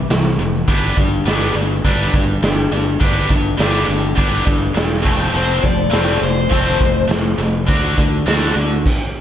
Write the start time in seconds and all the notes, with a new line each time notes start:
0.09 C2 C3 E3, snare, open hi-hat
0.39 F1 C3 E3
0.68 G1 G3 B3 D4, kick, open hi-hat
0.97 G1 G3 D4, kick
1.25 G1 G3 B3 D4, snare, open hi-hat
1.55 G1 G3 D4
1.85 G1 G3 B3 D4, kick, open hi-hat
2.14 G1 G3 D4, kick
2.42 G1 G3 D4, snare, open hi-hat
2.71 G1 G3 D4
3.00 G1 G3 B3 D4, kick, open hi-hat
3.29 G1 G3 D4, kick
3.57 G1 G3 B3 D4, snare, open hi-hat
3.87 G1 G3 D4
4.15 G1 G3 B3 D4, kick, open hi-hat
4.45 G1 G3 D4, kick, snare
4.75 E1 G3 D4, snare, open hi-hat
5.02 F1 F3 A3 C4, kick
5.32 F1 F3 A3 C4, open hi-hat
5.37 C5
5.61 F1 F3 A3 D5, kick
5.90 F1 F3 A3 C4, snare, open hi-hat
6.20 F1 F3 A3
6.24 C5
6.50 F1 F3 A3 C4, kick, open hi-hat
6.54 C5
6.79 F1 F3 A3, kick
7.08 F1 F3 A3, snare, open hi-hat
7.38 F1 F3 A3
7.67 D2 D3 D4 F#4, kick, open hi-hat
7.97 D2 D3 D4, kick
8.26 D2 D3 D4 F#4, snare, open hi-hat
8.56 D2 D3 D4
8.86 kick, crash